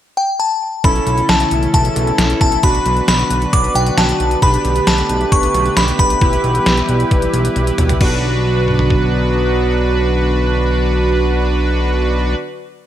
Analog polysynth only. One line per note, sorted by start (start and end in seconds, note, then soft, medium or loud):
0.84 2.60 C#4 medium
0.84 2.60 E4 medium
0.84 2.60 A4 medium
2.63 4.39 D4 medium
2.63 4.39 F#4 medium
2.63 4.39 B4 medium
4.42 6.18 D4 medium
4.42 6.18 G4 medium
4.42 6.18 B4 medium
6.21 7.97 E4 medium
6.21 7.97 G4 medium
6.21 7.97 B4 medium
8.01 12.35 D4 medium
8.01 12.35 F#4 medium
8.01 12.35 B4 medium